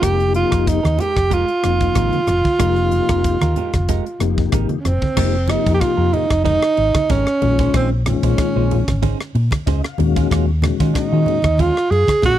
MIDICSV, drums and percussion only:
0, 0, Header, 1, 2, 480
1, 0, Start_track
1, 0, Tempo, 641711
1, 24, Time_signature, 4, 2, 24, 8
1, 9265, End_track
2, 0, Start_track
2, 0, Title_t, "Drums"
2, 20, Note_on_c, 9, 42, 89
2, 21, Note_on_c, 9, 36, 86
2, 21, Note_on_c, 9, 37, 83
2, 95, Note_off_c, 9, 37, 0
2, 95, Note_off_c, 9, 42, 0
2, 96, Note_off_c, 9, 36, 0
2, 151, Note_on_c, 9, 42, 36
2, 226, Note_off_c, 9, 42, 0
2, 258, Note_on_c, 9, 42, 63
2, 332, Note_off_c, 9, 42, 0
2, 388, Note_on_c, 9, 37, 81
2, 388, Note_on_c, 9, 42, 34
2, 390, Note_on_c, 9, 36, 72
2, 462, Note_off_c, 9, 42, 0
2, 463, Note_off_c, 9, 37, 0
2, 465, Note_off_c, 9, 36, 0
2, 504, Note_on_c, 9, 36, 95
2, 505, Note_on_c, 9, 42, 71
2, 579, Note_off_c, 9, 36, 0
2, 580, Note_off_c, 9, 42, 0
2, 634, Note_on_c, 9, 63, 65
2, 636, Note_on_c, 9, 42, 34
2, 637, Note_on_c, 9, 37, 77
2, 709, Note_off_c, 9, 63, 0
2, 711, Note_off_c, 9, 42, 0
2, 712, Note_off_c, 9, 37, 0
2, 738, Note_on_c, 9, 64, 66
2, 750, Note_on_c, 9, 42, 58
2, 813, Note_off_c, 9, 64, 0
2, 825, Note_off_c, 9, 42, 0
2, 870, Note_on_c, 9, 42, 27
2, 871, Note_on_c, 9, 37, 62
2, 872, Note_on_c, 9, 36, 74
2, 945, Note_off_c, 9, 42, 0
2, 946, Note_off_c, 9, 36, 0
2, 946, Note_off_c, 9, 37, 0
2, 980, Note_on_c, 9, 42, 68
2, 982, Note_on_c, 9, 36, 68
2, 1055, Note_off_c, 9, 42, 0
2, 1057, Note_off_c, 9, 36, 0
2, 1110, Note_on_c, 9, 42, 29
2, 1184, Note_off_c, 9, 42, 0
2, 1223, Note_on_c, 9, 42, 54
2, 1224, Note_on_c, 9, 37, 71
2, 1298, Note_off_c, 9, 42, 0
2, 1299, Note_off_c, 9, 37, 0
2, 1349, Note_on_c, 9, 42, 30
2, 1351, Note_on_c, 9, 36, 72
2, 1423, Note_off_c, 9, 42, 0
2, 1426, Note_off_c, 9, 36, 0
2, 1461, Note_on_c, 9, 37, 76
2, 1461, Note_on_c, 9, 42, 71
2, 1463, Note_on_c, 9, 36, 86
2, 1535, Note_off_c, 9, 42, 0
2, 1536, Note_off_c, 9, 37, 0
2, 1538, Note_off_c, 9, 36, 0
2, 1589, Note_on_c, 9, 42, 32
2, 1593, Note_on_c, 9, 63, 55
2, 1664, Note_off_c, 9, 42, 0
2, 1668, Note_off_c, 9, 63, 0
2, 1699, Note_on_c, 9, 64, 59
2, 1702, Note_on_c, 9, 37, 70
2, 1702, Note_on_c, 9, 42, 50
2, 1774, Note_off_c, 9, 64, 0
2, 1776, Note_off_c, 9, 42, 0
2, 1777, Note_off_c, 9, 37, 0
2, 1827, Note_on_c, 9, 63, 53
2, 1833, Note_on_c, 9, 36, 83
2, 1902, Note_off_c, 9, 63, 0
2, 1908, Note_off_c, 9, 36, 0
2, 1941, Note_on_c, 9, 37, 89
2, 1941, Note_on_c, 9, 42, 86
2, 1944, Note_on_c, 9, 36, 88
2, 2015, Note_off_c, 9, 42, 0
2, 2016, Note_off_c, 9, 37, 0
2, 2019, Note_off_c, 9, 36, 0
2, 2066, Note_on_c, 9, 42, 34
2, 2140, Note_off_c, 9, 42, 0
2, 2179, Note_on_c, 9, 63, 53
2, 2182, Note_on_c, 9, 42, 57
2, 2253, Note_off_c, 9, 63, 0
2, 2257, Note_off_c, 9, 42, 0
2, 2310, Note_on_c, 9, 42, 37
2, 2311, Note_on_c, 9, 37, 83
2, 2313, Note_on_c, 9, 36, 79
2, 2385, Note_off_c, 9, 42, 0
2, 2386, Note_off_c, 9, 37, 0
2, 2388, Note_off_c, 9, 36, 0
2, 2425, Note_on_c, 9, 42, 68
2, 2427, Note_on_c, 9, 36, 101
2, 2500, Note_off_c, 9, 42, 0
2, 2501, Note_off_c, 9, 36, 0
2, 2550, Note_on_c, 9, 63, 62
2, 2554, Note_on_c, 9, 42, 36
2, 2555, Note_on_c, 9, 37, 82
2, 2625, Note_off_c, 9, 63, 0
2, 2629, Note_off_c, 9, 42, 0
2, 2630, Note_off_c, 9, 37, 0
2, 2663, Note_on_c, 9, 64, 58
2, 2664, Note_on_c, 9, 42, 55
2, 2738, Note_off_c, 9, 64, 0
2, 2739, Note_off_c, 9, 42, 0
2, 2792, Note_on_c, 9, 63, 50
2, 2794, Note_on_c, 9, 42, 34
2, 2795, Note_on_c, 9, 36, 69
2, 2795, Note_on_c, 9, 37, 70
2, 2866, Note_off_c, 9, 63, 0
2, 2869, Note_off_c, 9, 42, 0
2, 2870, Note_off_c, 9, 36, 0
2, 2870, Note_off_c, 9, 37, 0
2, 2906, Note_on_c, 9, 42, 81
2, 2908, Note_on_c, 9, 36, 78
2, 2981, Note_off_c, 9, 42, 0
2, 2983, Note_off_c, 9, 36, 0
2, 3040, Note_on_c, 9, 42, 35
2, 3115, Note_off_c, 9, 42, 0
2, 3144, Note_on_c, 9, 42, 54
2, 3145, Note_on_c, 9, 37, 69
2, 3219, Note_off_c, 9, 42, 0
2, 3220, Note_off_c, 9, 37, 0
2, 3275, Note_on_c, 9, 36, 81
2, 3350, Note_off_c, 9, 36, 0
2, 3382, Note_on_c, 9, 42, 73
2, 3383, Note_on_c, 9, 37, 78
2, 3386, Note_on_c, 9, 36, 97
2, 3457, Note_off_c, 9, 42, 0
2, 3458, Note_off_c, 9, 37, 0
2, 3461, Note_off_c, 9, 36, 0
2, 3510, Note_on_c, 9, 42, 37
2, 3510, Note_on_c, 9, 63, 64
2, 3584, Note_off_c, 9, 42, 0
2, 3585, Note_off_c, 9, 63, 0
2, 3627, Note_on_c, 9, 64, 63
2, 3629, Note_on_c, 9, 37, 70
2, 3629, Note_on_c, 9, 42, 50
2, 3702, Note_off_c, 9, 64, 0
2, 3703, Note_off_c, 9, 42, 0
2, 3704, Note_off_c, 9, 37, 0
2, 3753, Note_on_c, 9, 63, 68
2, 3755, Note_on_c, 9, 36, 77
2, 3828, Note_off_c, 9, 63, 0
2, 3830, Note_off_c, 9, 36, 0
2, 3866, Note_on_c, 9, 37, 87
2, 3866, Note_on_c, 9, 49, 101
2, 3868, Note_on_c, 9, 36, 87
2, 3940, Note_off_c, 9, 49, 0
2, 3941, Note_off_c, 9, 37, 0
2, 3942, Note_off_c, 9, 36, 0
2, 4096, Note_on_c, 9, 63, 59
2, 4096, Note_on_c, 9, 64, 64
2, 4110, Note_on_c, 9, 51, 60
2, 4111, Note_on_c, 9, 37, 83
2, 4171, Note_off_c, 9, 63, 0
2, 4171, Note_off_c, 9, 64, 0
2, 4185, Note_off_c, 9, 37, 0
2, 4185, Note_off_c, 9, 51, 0
2, 4237, Note_on_c, 9, 36, 76
2, 4237, Note_on_c, 9, 51, 53
2, 4312, Note_off_c, 9, 36, 0
2, 4312, Note_off_c, 9, 51, 0
2, 4348, Note_on_c, 9, 37, 73
2, 4348, Note_on_c, 9, 51, 58
2, 4349, Note_on_c, 9, 36, 90
2, 4422, Note_off_c, 9, 51, 0
2, 4423, Note_off_c, 9, 37, 0
2, 4424, Note_off_c, 9, 36, 0
2, 4588, Note_on_c, 9, 64, 65
2, 4590, Note_on_c, 9, 51, 60
2, 4662, Note_off_c, 9, 64, 0
2, 4665, Note_off_c, 9, 51, 0
2, 4715, Note_on_c, 9, 51, 47
2, 4716, Note_on_c, 9, 36, 74
2, 4716, Note_on_c, 9, 37, 72
2, 4790, Note_off_c, 9, 51, 0
2, 4791, Note_off_c, 9, 36, 0
2, 4791, Note_off_c, 9, 37, 0
2, 4822, Note_on_c, 9, 63, 59
2, 4829, Note_on_c, 9, 36, 78
2, 4831, Note_on_c, 9, 51, 52
2, 4896, Note_off_c, 9, 63, 0
2, 4903, Note_off_c, 9, 36, 0
2, 4906, Note_off_c, 9, 51, 0
2, 4956, Note_on_c, 9, 37, 82
2, 5030, Note_off_c, 9, 37, 0
2, 5065, Note_on_c, 9, 51, 56
2, 5140, Note_off_c, 9, 51, 0
2, 5195, Note_on_c, 9, 51, 57
2, 5196, Note_on_c, 9, 37, 81
2, 5197, Note_on_c, 9, 36, 80
2, 5200, Note_on_c, 9, 63, 70
2, 5270, Note_off_c, 9, 37, 0
2, 5270, Note_off_c, 9, 51, 0
2, 5272, Note_off_c, 9, 36, 0
2, 5275, Note_off_c, 9, 63, 0
2, 5306, Note_on_c, 9, 51, 56
2, 5309, Note_on_c, 9, 36, 102
2, 5313, Note_on_c, 9, 64, 63
2, 5381, Note_off_c, 9, 51, 0
2, 5384, Note_off_c, 9, 36, 0
2, 5388, Note_off_c, 9, 64, 0
2, 5437, Note_on_c, 9, 37, 70
2, 5511, Note_off_c, 9, 37, 0
2, 5549, Note_on_c, 9, 51, 58
2, 5549, Note_on_c, 9, 64, 59
2, 5623, Note_off_c, 9, 51, 0
2, 5624, Note_off_c, 9, 64, 0
2, 5674, Note_on_c, 9, 51, 53
2, 5677, Note_on_c, 9, 36, 87
2, 5749, Note_off_c, 9, 51, 0
2, 5752, Note_off_c, 9, 36, 0
2, 5790, Note_on_c, 9, 36, 90
2, 5790, Note_on_c, 9, 51, 64
2, 5791, Note_on_c, 9, 37, 86
2, 5865, Note_off_c, 9, 36, 0
2, 5865, Note_off_c, 9, 51, 0
2, 5866, Note_off_c, 9, 37, 0
2, 6029, Note_on_c, 9, 37, 85
2, 6029, Note_on_c, 9, 51, 66
2, 6036, Note_on_c, 9, 63, 55
2, 6036, Note_on_c, 9, 64, 55
2, 6103, Note_off_c, 9, 51, 0
2, 6104, Note_off_c, 9, 37, 0
2, 6111, Note_off_c, 9, 63, 0
2, 6111, Note_off_c, 9, 64, 0
2, 6158, Note_on_c, 9, 36, 68
2, 6158, Note_on_c, 9, 51, 59
2, 6232, Note_off_c, 9, 51, 0
2, 6233, Note_off_c, 9, 36, 0
2, 6269, Note_on_c, 9, 51, 59
2, 6270, Note_on_c, 9, 36, 99
2, 6270, Note_on_c, 9, 37, 75
2, 6344, Note_off_c, 9, 51, 0
2, 6345, Note_off_c, 9, 36, 0
2, 6345, Note_off_c, 9, 37, 0
2, 6516, Note_on_c, 9, 51, 63
2, 6518, Note_on_c, 9, 64, 61
2, 6591, Note_off_c, 9, 51, 0
2, 6593, Note_off_c, 9, 64, 0
2, 6642, Note_on_c, 9, 36, 74
2, 6643, Note_on_c, 9, 51, 55
2, 6644, Note_on_c, 9, 37, 63
2, 6648, Note_on_c, 9, 63, 61
2, 6716, Note_off_c, 9, 36, 0
2, 6718, Note_off_c, 9, 51, 0
2, 6719, Note_off_c, 9, 37, 0
2, 6723, Note_off_c, 9, 63, 0
2, 6750, Note_on_c, 9, 63, 52
2, 6752, Note_on_c, 9, 36, 76
2, 6755, Note_on_c, 9, 51, 56
2, 6825, Note_off_c, 9, 63, 0
2, 6827, Note_off_c, 9, 36, 0
2, 6829, Note_off_c, 9, 51, 0
2, 6885, Note_on_c, 9, 37, 74
2, 6960, Note_off_c, 9, 37, 0
2, 6995, Note_on_c, 9, 51, 61
2, 7070, Note_off_c, 9, 51, 0
2, 7112, Note_on_c, 9, 63, 67
2, 7121, Note_on_c, 9, 36, 79
2, 7124, Note_on_c, 9, 37, 75
2, 7124, Note_on_c, 9, 51, 60
2, 7187, Note_off_c, 9, 63, 0
2, 7196, Note_off_c, 9, 36, 0
2, 7198, Note_off_c, 9, 51, 0
2, 7199, Note_off_c, 9, 37, 0
2, 7233, Note_on_c, 9, 64, 56
2, 7234, Note_on_c, 9, 36, 94
2, 7238, Note_on_c, 9, 51, 53
2, 7308, Note_off_c, 9, 64, 0
2, 7309, Note_off_c, 9, 36, 0
2, 7312, Note_off_c, 9, 51, 0
2, 7364, Note_on_c, 9, 37, 78
2, 7439, Note_off_c, 9, 37, 0
2, 7467, Note_on_c, 9, 64, 58
2, 7478, Note_on_c, 9, 51, 61
2, 7542, Note_off_c, 9, 64, 0
2, 7552, Note_off_c, 9, 51, 0
2, 7603, Note_on_c, 9, 36, 85
2, 7608, Note_on_c, 9, 51, 58
2, 7678, Note_off_c, 9, 36, 0
2, 7683, Note_off_c, 9, 51, 0
2, 7715, Note_on_c, 9, 36, 91
2, 7722, Note_on_c, 9, 51, 66
2, 7723, Note_on_c, 9, 37, 85
2, 7789, Note_off_c, 9, 36, 0
2, 7797, Note_off_c, 9, 37, 0
2, 7797, Note_off_c, 9, 51, 0
2, 7945, Note_on_c, 9, 63, 61
2, 7945, Note_on_c, 9, 64, 63
2, 7955, Note_on_c, 9, 51, 62
2, 7956, Note_on_c, 9, 37, 82
2, 8020, Note_off_c, 9, 63, 0
2, 8020, Note_off_c, 9, 64, 0
2, 8030, Note_off_c, 9, 51, 0
2, 8031, Note_off_c, 9, 37, 0
2, 8080, Note_on_c, 9, 36, 83
2, 8080, Note_on_c, 9, 51, 56
2, 8155, Note_off_c, 9, 36, 0
2, 8155, Note_off_c, 9, 51, 0
2, 8193, Note_on_c, 9, 36, 94
2, 8197, Note_on_c, 9, 37, 70
2, 8197, Note_on_c, 9, 51, 63
2, 8267, Note_off_c, 9, 36, 0
2, 8271, Note_off_c, 9, 51, 0
2, 8272, Note_off_c, 9, 37, 0
2, 8422, Note_on_c, 9, 64, 60
2, 8436, Note_on_c, 9, 51, 56
2, 8497, Note_off_c, 9, 64, 0
2, 8511, Note_off_c, 9, 51, 0
2, 8544, Note_on_c, 9, 63, 62
2, 8557, Note_on_c, 9, 51, 51
2, 8558, Note_on_c, 9, 36, 81
2, 8558, Note_on_c, 9, 37, 81
2, 8618, Note_off_c, 9, 63, 0
2, 8632, Note_off_c, 9, 36, 0
2, 8632, Note_off_c, 9, 51, 0
2, 8633, Note_off_c, 9, 37, 0
2, 8660, Note_on_c, 9, 63, 57
2, 8671, Note_on_c, 9, 36, 88
2, 8676, Note_on_c, 9, 51, 62
2, 8735, Note_off_c, 9, 63, 0
2, 8746, Note_off_c, 9, 36, 0
2, 8750, Note_off_c, 9, 51, 0
2, 8805, Note_on_c, 9, 37, 70
2, 8880, Note_off_c, 9, 37, 0
2, 8916, Note_on_c, 9, 51, 55
2, 8991, Note_off_c, 9, 51, 0
2, 9032, Note_on_c, 9, 63, 74
2, 9038, Note_on_c, 9, 36, 78
2, 9044, Note_on_c, 9, 37, 76
2, 9044, Note_on_c, 9, 51, 59
2, 9107, Note_off_c, 9, 63, 0
2, 9113, Note_off_c, 9, 36, 0
2, 9118, Note_off_c, 9, 51, 0
2, 9119, Note_off_c, 9, 37, 0
2, 9143, Note_on_c, 9, 64, 61
2, 9151, Note_on_c, 9, 36, 104
2, 9156, Note_on_c, 9, 51, 51
2, 9218, Note_off_c, 9, 64, 0
2, 9225, Note_off_c, 9, 36, 0
2, 9231, Note_off_c, 9, 51, 0
2, 9265, End_track
0, 0, End_of_file